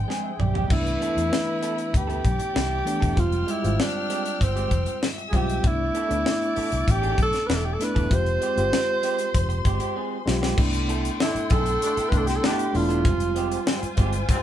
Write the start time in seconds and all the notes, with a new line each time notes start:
Already playing: F3 G3 G#3 C4 D4 G5 G#5 C6
0.08 G#3 C4 G#4 G#5, snare
0.24 E5
0.34 G#4
0.39 B1 G4 D5, muted clean electric guitar stroke, mid tom
0.54 G#3 C4 G4, floor tom
0.69 C2 E3 A3 B3 D4 E4 B4 B5, kick, crash
0.86 closed hi-hat
1.00 B3 E4 A4, closed hi-hat
1.15 E2 E3 A3 B3 E4, closed hi-hat
1.31 muted clean electric guitar stroke, snare
1.46 muted clean electric guitar stroke
1.61 B3 E4 A4, closed hi-hat
1.77 muted clean electric guitar stroke, closed hi-hat
1.92 D2, muted clean electric guitar stroke, kick, closed hi-hat
1.96 G4
2.07 B3 E4 A4, closed hi-hat
2.23 B1 D5 D6, muted clean electric guitar stroke, kick, closed hi-hat
2.39 muted clean electric guitar stroke, closed hi-hat
2.54 C2 B3 E4 B4, snare
2.85 E3 A3 B3 D4, muted clean electric guitar stroke, closed hi-hat
3.00 E1 B3 E4 A4, kick, closed hi-hat
3.15 F1 G3 G#3 C4 F4 G5 F6, kick, closed hi-hat
3.20 F4
3.32 closed hi-hat
3.47 G#3 C4 G4, closed hi-hat
3.51 E4
3.62 G#1 G3 G#3 C4 F4, closed hi-hat
3.78 D4, muted clean electric guitar stroke, snare
3.94 muted clean electric guitar stroke
4.09 G#3 C4 G4, closed hi-hat
4.25 muted clean electric guitar stroke, closed hi-hat
4.40 G1 C4, muted clean electric guitar stroke, kick, closed hi-hat
4.56 G#3 C4 G4, closed hi-hat
4.71 F1, muted clean electric guitar stroke, kick, closed hi-hat
4.86 muted clean electric guitar stroke, closed hi-hat
5.03 E5 E6, snare
5.18 muted clean electric guitar stroke, closed hi-hat
5.29 G3 G#3 G#4
5.33 B1 G#3 C4 F4 G4, kick, closed hi-hat
5.48 muted clean electric guitar stroke, closed hi-hat
5.63 C2 A3 B3 D4 E4 D5 D6, kick, closed hi-hat
5.67 E4
5.94 B3 E4 A4, closed hi-hat
6.09 D2 A3 B3 D4 E4, closed hi-hat
6.25 muted clean electric guitar stroke, snare
6.41 muted clean electric guitar stroke, closed hi-hat
6.56 B3 E4 A4, muted fingered electric bass stroke, open hi-hat
6.72 C2, muted clean electric guitar stroke, closed hi-hat
6.87 A1 G4, muted clean electric guitar stroke, kick, closed hi-hat
7.02 B3 E4 A4, closed hi-hat
7.18 B1, muted clean electric guitar stroke, kick, closed hi-hat
7.23 A4
7.33 muted clean electric guitar stroke, snare, closed hi-hat
7.47 E1 B3 E4 B4, snare
7.56 A4
7.65 G4
7.74 A4
7.79 A3 B3 D4 E4, muted clean electric guitar stroke, snare, closed hi-hat
7.83 B4
7.95 E1 B3 E4 A4, kick, closed hi-hat
8.09 F1 G#3 C4 F4 G4 C5 C6, kick, closed hi-hat
8.15 C5
8.26 closed hi-hat
8.41 G#3 C4 G4, closed hi-hat
8.56 G1 G#3 C4 F4 G4, closed hi-hat
8.72 muted clean electric guitar stroke, snare
8.88 muted clean electric guitar stroke
9.03 G#3 C4 G4, closed hi-hat
9.18 muted clean electric guitar stroke, closed hi-hat
9.34 F1, muted clean electric guitar stroke, kick, closed hi-hat
9.49 muted clean electric guitar stroke, closed hi-hat
9.65 G1 G#3 C4 G4, kick, closed hi-hat
9.80 G#3 C4 G4, closed hi-hat
9.95 G#3 C4 G#4
10.26 B1 G#3 C4 F4 G4, muted clean electric guitar stroke, snare
10.42 G#3 C4 G4, snare
10.56 C2 A3 B3 D4 E4 A4 G5 C6, kick, crash
10.73 closed hi-hat
10.88 B3 E4 A4, closed hi-hat
11.05 closed hi-hat
11.19 B2 A3 D4 E4, muted clean electric guitar stroke, snare
11.35 muted clean electric guitar stroke, muted fingered electric bass stroke, closed hi-hat
11.50 B1 B3 E4 A4, kick, closed hi-hat
11.65 muted clean electric guitar stroke, closed hi-hat
11.81 B2 A3 D4, muted clean electric guitar stroke, closed hi-hat
11.97 B3 E4 A4, muted fingered electric bass stroke, closed hi-hat
12.09 C2 B2 A3 B3 D4 B4, muted clean electric guitar stroke, kick
12.13 E4, closed hi-hat
12.17 A4
12.27 G4, muted clean electric guitar stroke, snare, closed hi-hat
12.36 A4
12.43 B2 A3 B3 D4 E4 G4 B4, snare
12.59 closed hi-hat
12.73 E1 A3 B3 D4 E4 F4, muted clean electric guitar stroke, open hi-hat
12.89 B3 E4 A4, closed hi-hat
13.04 F1 G3 G#3 C4 F4 C5 G#5, kick, closed hi-hat
13.20 closed hi-hat
13.35 G#3 C4 G4, closed hi-hat
13.52 closed hi-hat
13.66 G#2 G3 C4, muted clean electric guitar stroke, snare
13.82 muted clean electric guitar stroke, muted fingered electric bass stroke, closed hi-hat
13.97 G1 G#3 C4 G4, kick, closed hi-hat
14.12 muted clean electric guitar stroke, closed hi-hat
14.28 G#2 G3 C4, muted clean electric guitar stroke, kick, closed hi-hat